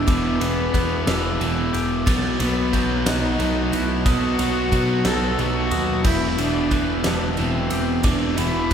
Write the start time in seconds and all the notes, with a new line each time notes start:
Already playing: B3 D4 G4
0.07 E1 E2 B2 E3 B3 D6, kick, ride
0.40 E1 E2 B2 E3 B3, ride
0.74 E2 B2 E3 F#6, kick, ride
1.06 E1 E2 B2 E3 D4 E6, snare, ride
1.39 E1 E2 B2 E3 B3, ride
1.73 E1 G4 D6, ride
2.06 B1 B2 F#3 B3 A6, kick, ride
2.40 B1 B2 F#3 B3, ride
2.73 B1 B2 F#3 B3 G6, kick, ride
3.06 B1 B2 F#3 B3 D#4 F#6, snare, ride
3.38 B1 B2 F#3 A3 B3, ride
3.72 B1 E4 F#4 F#6, ride
4.05 B1 B2 F#3 B3 F#4 D#6, kick, ride
4.39 B1 B2 F#3 B3, ride
4.71 B2 F#3 B3 F#6, kick, ride
5.04 B1 B2 F#3 B3 D#4 A4 E6, snare, ride
5.38 B1 B2 F#3 A3 B3 F#4, ride
5.71 D#2 F#4 D#6, ride
6.04 E1 E2 B2 E3 E4 G6, kick, crash
6.37 E1 E2 B2 E3 B3 D4, ride
6.71 E1 E2 B2 E3 F#6, kick, ride
7.04 E1 E2 B2 E3 B3 D4 E6, snare, ride
7.37 E1 E2 B2 E3 C4, ride
7.70 E1 G4 E6, ride
8.03 E1 E2 B2 E3 D4 D6, kick, ride
8.37 E1 E2 B2 E3 B3 E4, ride
8.70 E2